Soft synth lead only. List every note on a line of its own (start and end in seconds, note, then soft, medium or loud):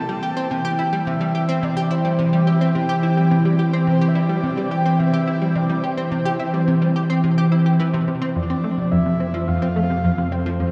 0.00 0.53 A5 loud
0.51 1.09 G5 loud
1.08 1.66 E5 loud
1.64 1.93 D5 loud
1.92 2.49 C5 loud
2.48 2.75 E5 medium
2.76 3.55 G5 medium
3.87 4.10 C5 loud
4.08 4.16 E5 medium
4.15 4.73 D5 loud
4.71 5.00 G5 loud
4.99 5.57 E5 loud
5.56 5.85 D5 loud
5.84 7.80 C5 loud
8.36 8.93 D5 loud
8.91 9.47 E5 loud
9.48 10.33 F5 loud
10.32 10.72 C5 loud